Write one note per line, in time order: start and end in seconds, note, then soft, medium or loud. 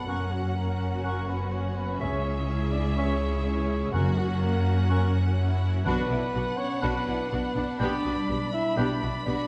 0.00 0.10 B2 soft
0.00 2.03 F#3 soft
0.00 0.43 F#4 soft
0.00 0.10 D5 soft
0.00 0.55 F#5 soft
0.00 1.97 F#5 medium
0.06 2.01 F#1 soft
0.06 2.01 F#2 medium
0.06 2.03 F#2 soft
0.06 0.17 A#3 medium
0.06 0.55 C#4 medium
0.06 0.25 C#4 soft
0.06 3.90 C#4 soft
0.06 1.97 F#4 soft
0.06 0.33 A#4 medium
0.06 0.25 F#5 medium
0.06 0.31 C#6 medium
0.20 1.16 C#4 soft
0.31 0.55 F#3 medium
0.31 0.56 F#4 medium
0.31 0.92 C#5 soft
0.44 1.40 F#4 soft
0.55 1.03 A#3 medium
0.55 2.46 C#4 medium
0.55 1.04 A#4 medium
0.55 0.79 F#5 soft
0.68 1.64 C#6 soft
0.80 1.52 F#5 soft
0.93 1.28 C#5 soft
1.04 2.00 C#3 soft
1.04 1.28 A#3 medium
1.04 1.21 C#4 medium
1.04 1.28 A#4 medium
1.04 1.21 F#5 medium
1.04 1.28 C#6 medium
1.17 2.12 C#4 soft
1.28 1.53 B3 medium
1.28 1.53 B4 medium
1.28 1.87 C#5 soft
1.41 2.04 F#4 soft
1.52 1.76 C#4 medium
1.52 1.78 C#5 medium
1.52 1.75 F#5 medium
1.76 2.01 B3 medium
1.76 2.00 B4 medium
1.76 2.03 F#5 soft
1.88 2.24 C#5 soft
1.99 3.94 C#2 medium
1.99 3.96 C#3 medium
1.99 2.71 C#4 medium
1.99 2.19 C#4 soft
1.99 3.94 G#4 medium
1.99 2.74 C#5 medium
1.99 2.18 E5 medium
1.99 3.94 E5 medium
1.99 2.24 C#6 medium
2.13 3.09 C#4 soft
2.25 2.84 C#5 soft
2.37 3.32 E4 soft
2.49 3.91 E4 medium
2.49 2.72 E5 soft
2.72 2.83 D4 medium
2.72 2.96 D5 medium
2.72 3.44 E5 soft
2.85 3.20 C#5 soft
2.96 3.96 G#3 soft
2.96 3.44 C#4 medium
2.96 3.15 C#4 medium
2.96 3.44 C#5 medium
2.96 3.14 E5 medium
2.96 3.20 C#6 medium
3.10 4.04 C#4 soft
3.33 3.96 E4 soft
3.45 3.93 C#4 medium
3.45 3.95 C#5 medium
3.45 3.68 E5 medium
3.69 3.95 E5 soft
3.81 4.16 C#5 soft
3.93 5.82 F#1 medium
3.93 5.88 F#2 medium
3.93 4.62 F#2 medium
3.93 5.83 F#2 medium
3.93 4.19 A#3 medium
3.93 5.82 C#4 medium
3.93 4.11 C#4 medium
3.93 5.82 F#4 medium
3.93 4.41 F#4 medium
3.93 4.19 A#4 medium
3.93 4.10 F#5 medium
3.93 5.82 F#5 medium
3.93 4.16 C#6 medium
4.05 5.01 C#4 soft
4.18 4.29 F#3 medium
4.18 4.42 F#4 medium
4.18 4.77 C#5 soft
4.30 5.24 F#4 soft
4.42 4.89 A#3 medium
4.42 4.89 A#4 medium
4.42 4.65 F#5 medium
4.54 5.48 C#6 medium
4.66 5.36 F#5 medium
4.78 5.13 C#5 medium
4.89 5.88 C#3 soft
4.89 5.14 A#3 medium
4.89 5.07 C#4 medium
4.89 5.38 C#4 medium
4.89 5.14 A#4 medium
4.89 5.07 F#5 medium
4.89 5.12 C#6 medium
5.02 5.88 C#4 soft
5.14 5.72 C#5 medium
5.26 7.82 F#4 medium
5.37 5.85 E4 medium
5.37 5.61 F#5 medium
5.50 5.88 C#6 medium
5.62 6.32 F#5 medium
5.74 5.88 C#5 medium
5.85 5.94 B1 medium
5.85 5.94 B2 medium
5.85 6.54 B2 medium
5.85 7.79 B2 medium
5.85 6.54 B3 medium
5.85 6.02 D4 medium
5.85 6.09 D4 medium
5.85 9.26 D4 medium
5.85 6.09 F#4 medium
5.85 6.59 B4 loud
5.85 6.03 F#5 medium
5.85 7.76 F#5 medium
5.85 6.09 B5 medium
5.98 6.93 D4 medium
6.10 6.18 B1 medium
6.10 6.18 B2 medium
6.10 6.19 D4 medium
6.10 6.19 E4 medium
6.10 6.69 B4 medium
6.22 7.18 D5 medium
6.34 6.42 B1 medium
6.34 6.42 B2 medium
6.34 6.43 D4 medium
6.34 6.43 F#4 medium
6.34 6.56 F#5 medium
6.46 7.42 B5 medium
6.57 6.82 C#4 medium
6.57 6.81 C#5 loud
6.57 7.30 F#5 medium
6.70 7.06 B4 medium
6.81 6.91 B1 medium
6.81 6.91 B2 medium
6.81 7.82 F#3 medium
6.81 7.29 B3 medium
6.81 6.99 D4 medium
6.81 7.05 D4 medium
6.81 7.06 F#4 medium
6.81 7.30 B4 loud
6.81 6.99 F#5 medium
6.81 7.06 B5 medium
6.95 9.47 D4 soft
7.07 7.15 B1 medium
7.07 7.15 B2 medium
7.07 7.16 D4 medium
7.07 7.16 E4 medium
7.19 9.47 D5 medium
7.31 7.40 B1 medium
7.31 7.39 B2 medium
7.31 7.79 B3 medium
7.31 7.40 D4 medium
7.31 7.40 F#4 medium
7.31 7.79 B4 medium
7.31 7.55 F#5 medium
7.43 8.39 B5 medium
7.55 7.65 B1 medium
7.55 7.63 B2 medium
7.55 7.65 D4 medium
7.55 7.82 F#5 medium
7.68 8.03 B4 medium
7.79 7.88 B1 medium
7.79 7.87 B2 medium
7.79 8.75 B2 medium
7.79 8.04 B3 medium
7.79 7.97 D4 medium
7.79 8.51 D4 medium
7.79 8.03 G4 medium
7.79 8.51 D5 loud
7.79 7.96 G5 medium
7.79 9.47 B5 medium
7.79 8.03 B5 medium
8.04 8.13 B1 medium
8.04 8.12 B2 medium
8.04 8.14 B3 medium
8.04 8.13 F#4 medium
8.04 8.64 B4 medium
8.16 9.47 G3 medium
8.28 8.37 B1 medium
8.28 8.36 B2 medium
8.28 8.37 B3 medium
8.28 8.37 G4 medium
8.40 9.36 B5 medium
8.53 8.77 E4 medium
8.53 8.78 E5 loud
8.65 8.99 B4 soft
8.76 8.86 B1 medium
8.76 8.84 B2 medium
8.76 9.47 B2 medium
8.76 9.00 B3 medium
8.76 8.94 D4 medium
8.76 9.26 D4 medium
8.76 9.00 G4 medium
8.76 9.26 D5 loud
8.76 8.94 G5 medium
8.76 9.00 B5 medium
8.88 9.47 B3 medium
9.01 9.10 B1 medium
9.01 9.09 B2 medium
9.01 9.09 B3 medium
9.01 9.10 F#4 medium
9.01 9.47 B4 medium
9.25 9.34 B1 medium
9.25 9.35 B2 medium
9.25 9.34 B3 medium
9.25 9.47 D4 medium
9.25 9.47 F#4 medium
9.25 9.34 G4 medium
9.25 9.47 D5 medium
9.37 9.47 B5 soft